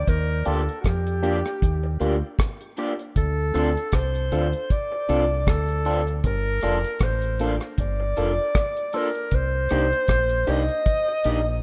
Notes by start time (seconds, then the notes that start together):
Already playing: D5
0.07 D#2 A#4, kick, closed hi-hat
0.45 D2 A#3 D4 F4 G4 A4 A#4 D5, closed hi-hat
0.69 closed hi-hat
0.80 F#4, kick, closed hi-hat
0.85 F2 G4, cross-stick
1.07 closed hi-hat
1.22 A#3 D4 F4 G4 A#4 D5, closed hi-hat
1.45 cross-stick, closed hi-hat
1.62 D#2, kick, closed hi-hat
1.83 muted clean electric guitar stroke
2.00 D2 A#3 D4 F4 G4 A#4 D5, closed hi-hat
2.39 kick, cross-stick, closed hi-hat
2.61 closed hi-hat
2.77 A#3 D4 F4 G4 A#4 D5, closed hi-hat
2.99 muted clean electric guitar stroke, closed hi-hat
3.16 D2 A4, kick, closed hi-hat
3.54 D2 C4 D4 F4 A4 D5, cross-stick, closed hi-hat
3.77 closed hi-hat
3.92 C2 C5, kick, cross-stick, closed hi-hat
4.15 closed hi-hat
4.31 D2 C4 D4 F4 A4 D5, closed hi-hat
4.53 closed hi-hat
4.70 D5, kick, closed hi-hat
4.92 muted clean electric guitar stroke
5.08 C2 C4 D4 F4 A4 D5, closed hi-hat
5.47 D2 A4, kick, cross-stick, closed hi-hat
5.69 closed hi-hat
5.85 C4 D4 F4 A4 D5, closed hi-hat
6.07 muted clean electric guitar stroke, closed hi-hat
6.24 G1 A#4, kick, closed hi-hat
6.61 F1 A#3 D4 F4 A4 D5, cross-stick, closed hi-hat
6.84 closed hi-hat
6.99 A1 C5, kick, cross-stick, closed hi-hat
7.22 closed hi-hat
7.39 A#3 D4 F4 A4 D5, closed hi-hat
7.60 cross-stick, closed hi-hat
7.78 G1 D5, kick, closed hi-hat
8.00 muted clean electric guitar stroke
8.16 F1 A#3 D4 F4 A4 D5, closed hi-hat
8.55 kick, cross-stick, closed hi-hat
8.77 closed hi-hat
8.93 A#3 D4 F4 A4 A#4 D5, closed hi-hat
9.15 muted clean electric guitar stroke, closed hi-hat
9.31 C2 C5, kick, closed hi-hat
9.69 C2 A#3 D4 D#4 G4 D5, cross-stick, closed hi-hat
9.93 closed hi-hat
10.08 A#1, kick, cross-stick, closed hi-hat
10.29 closed hi-hat
10.47 C2 A#3 D4 D#4 G4 D5 D#5, closed hi-hat
10.69 closed hi-hat
10.86 kick, closed hi-hat
11.08 muted clean electric guitar stroke
11.24 A#1 A#3 D4 D#4 G4 D5, closed hi-hat